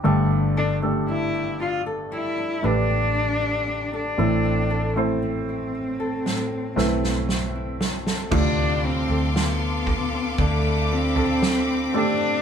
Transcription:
<<
  \new Staff \with { instrumentName = "String section" } { \time 4/4 \key d \dorian \tempo 4 = 58 << { r1 | r1 | <a' f'' d'''>1 | } \\ { r1 | r1 | c'''2 b''2 | } >> }
  \new Staff \with { instrumentName = "Nylon-string guitar" } { \time 4/4 \key d \dorian g16 d'16 a'16 g'16 d'16 g'16 d'16 a'16 g16 d'16 a'16 g'16 d'16 g'16 d'16 a'16 | a,16 c'16 a'16 e'16 c'16 e'16 c'16 a'16 a,16 c'16 a'16 e'16 c'16 e'16 c'16 a'16 | d16 c'16 f'16 a'16 f'8 a'16 c'16 d16 c'16 f'16 a'16 f'16 c'16 a'16 c'16 | }
  \new Staff \with { instrumentName = "Cello" } { \time 4/4 \key d \dorian r8 d'8 e'8 f'8 e'8 d'4~ d'16 d'16~ | d'8. c'2~ c'8. r8 | d'8 c'8 b4 a8 c'4 d'8 | }
  \new Staff \with { instrumentName = "Grand piano" } { \time 4/4 \key d \dorian <a d' g' a'>8. <a d' g' a'>4.~ <a d' g' a'>16 <a d' g' b'>4. | <a c' e' a'>8. <a c' e' c''>4.~ <a c' e' c''>16 <a c' e' b'>4. | <c a d' f'>2 r4. <a c' d' g'>8 | }
  \new Staff \with { instrumentName = "Grand piano" } { \clef bass \time 4/4 \key d \dorian <g, d>4. r2 r8 | <a, e>4. r2 r8 | a,4. r2 r8 | }
  \new Staff \with { instrumentName = "Fingered electric bass" } { \clef bass \time 4/4 \key d \dorian g,,2~ g,,8 a,,4. | a,,2~ a,,8 b,,4. | d,8. d,4~ d,16 d,4. r8 | }
  \new DrumStaff \with { instrumentName = "Drums" } \drummode { \time 4/4 r4 r4 r4 r4 | r4 r4 sn8 sn16 sn16 sn8 sn16 sn16 | <cymc bd tomfh>4 sn8 <bd tomfh>8 <bd tomfh>8. tomfh16 sn4 | }
>>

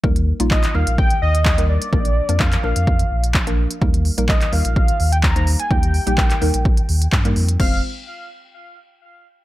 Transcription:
<<
  \new Staff \with { instrumentName = "Soft synth lead" } { \time 4/4 \key ees \major \tempo 4 = 127 r4 ees''8 f''8 g''8 ees''4 d''8~ | d''4 f''8 f''4. r4 | r4 ees''8 f''4~ f''16 g''16 bes''8. aes''16 | g''2. r4 |
f''8 r2. r8 | }
  \new Staff \with { instrumentName = "Synth pluck" } { \time 4/4 \key ees \major <g bes ees' bes'>8 r16 <g bes ees' f'>16 <g bes ees' f'>16 r16 <g bes ees' bes'>4~ <g bes ees' bes'>16 r8 <g bes ees' bes'>8 r16 | <f bes d' bes'>8 r16 <f bes d' bes'>16 <f bes d' bes'>16 r16 <f bes d' bes'>4~ <f bes d' bes'>16 r8 <f bes d' bes'>8 r16 | <g bes ees' bes'>8 r16 <g bes ees' bes'>16 <g bes ees' bes'>16 r16 <g bes ees' bes'>4~ <g bes ees' bes'>16 r8 <g bes ees' c''>8 r16 | <g bes ees' g'>8 r16 <g bes ees' g'>16 <g bes ees' bes'>16 r16 <g bes ees' bes'>4~ <g bes ees' bes'>16 r8 <g bes ees' bes'>8 r16 |
<aes c' f' c''>8 r2. r8 | }
  \new Staff \with { instrumentName = "Sub bass" } { \clef bass \time 4/4 \key ees \major ees,8. bes,,8. ees,16 bes,,8. ees,4. | bes,,8. f,8. bes,,16 f,8. bes,,4. | ees,8. bes,,8. ees,16 bes,,8. ees,4. | ees,8. bes,,8. ees,16 bes,,8. ees,8 g,8 f,8 |
f,,8 r2. r8 | }
  \new DrumStaff \with { instrumentName = "Drums" } \drummode { \time 4/4 bd16 hh8 hh16 <hc bd>16 <hc hh>8 hh16 bd16 hh8 hh16 <hc bd>16 hh8 hh16 | bd16 hh8 hh16 <hc bd>16 <hc hh>8 hh16 bd16 hh8 hh16 <hc bd>16 hh8 hh16 | bd16 hh16 hho16 hh16 <hc bd>16 <hc hh>16 hho16 hh16 bd16 hh16 hho16 hh16 <hc bd>16 hh16 hho16 hh16 | bd16 hh16 hho16 hh16 <hc bd>16 <hc hh>16 hho16 hh16 bd16 hh16 hho16 hh16 <hc bd>16 hh16 hho16 hh16 |
<cymc bd>4 r4 r4 r4 | }
>>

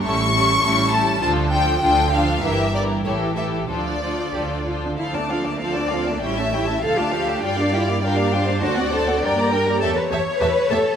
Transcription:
<<
  \new Staff \with { instrumentName = "Violin section" } { \time 2/4 \key d \minor \tempo 4 = 99 cis'''4. a''8 | a''8 g''8 g''8 f''8 | e''8 d''8 cis''8 e''8 | d''4. r8 |
r4 d''4 | e''4 f''4 | d''4 bes'8 c''8 | d''4 bes'4 |
\key a \mixolydian cis''2 | }
  \new Staff \with { instrumentName = "Violin section" } { \time 2/4 \key d \minor <e' a'>8 <e' a'>8 <e' a'>8 <e' a'>8 | <f' a'>8 <f' a'>8 <f' a'>8 <f' a'>8 | <g' bes'>8 <g' bes'>8 <g' a'>8 <g' a'>8 | <f' a'>8 <f' a'>8 <f' a'>8 <f' a'>8 |
<a' f''>16 <d'' a''>16 <a' f''>16 <d'' a''>16 <a' f''>16 <d'' a''>16 <a' f''>16 <d'' a''>16 | <cis'' g''>16 <e'' a''>16 <cis'' g''>16 <e'' a''>16 <a' f''>16 <d'' a''>16 <a' f''>16 <d'' a''>16 | <f'' g''>16 <d'' f''>16 <f'' g''>16 <d'' f''>16 <f'' g''>16 <d'' f''>16 <f'' g''>16 <d'' f''>16 | <c'' a''>16 <d'' fis''>16 <c'' a''>16 <d'' fis''>16 <bes' g''>16 <d'' bes''>16 <bes' g''>16 <d'' bes''>16 |
\key a \mixolydian <e'' a''>8 <e'' a''>8 <e'' a''>8 <e'' a''>8 | }
  \new Staff \with { instrumentName = "Cello section" } { \time 2/4 \key d \minor << { r2 | r2 | r2 | r4 g'8 f'16 d'16 |
e'16 c'16 d'16 bes16 c'8. bes16 | cis'8 e'8 a'16 f'16 g'8 | f'16 d'16 e'8 d'4 | fis'8 a'8 d''8 bes'8 |
\key a \mixolydian a'16 b'16 cis''8 b'8 a'8 | } \\ { a,4 a,4 | d4 d4 | g,4 a,4 | d4 d4 |
r2 | r2 | r2 | r2 |
r2 | } >> }
  \new Staff \with { instrumentName = "Viola section" } { \time 2/4 \key d \minor <g cis'>8 <g cis'>8 <g cis'>8 <g cis'>8 | <f d'>8 <f d'>8 <f d'>8 <f d'>8 | <e e'>8 <e e'>8 <e e'>8 <e e'>8 | <f d'>8 <f d'>8 <f d'>8 <f d'>8 |
<f f'>16 <a d'>16 <f f'>16 <a d'>16 <f f'>16 <a d'>16 <f f'>16 <a d'>16 | <g e'>16 <a cis'>16 <g e'>16 <a cis'>16 <f f'>16 <a d'>16 <f f'>16 <a d'>16 | <g f'>16 <bes g'>16 <g f'>16 <bes g'>16 <g f'>16 <bes g'>16 <g f'>16 <bes g'>16 | <a d'>16 <c' fis'>16 <a d'>16 <c' fis'>16 <g d'>16 <bes g'>16 <g d'>16 <bes g'>16 |
\key a \mixolydian <a g'>8 <a g'>8 <a g'>8 <a g'>8 | }
  \new Staff \with { instrumentName = "Double bass section" } { \clef bass \time 2/4 \key d \minor a,,4 a,,4 | d,4 d,4 | g,,4 a,,4 | d,4 d,4 |
d,2 | a,,4 d,4 | g,2 | d,4 g,4 |
\key a \mixolydian e,8 e,8 e,8 e,8 | }
>>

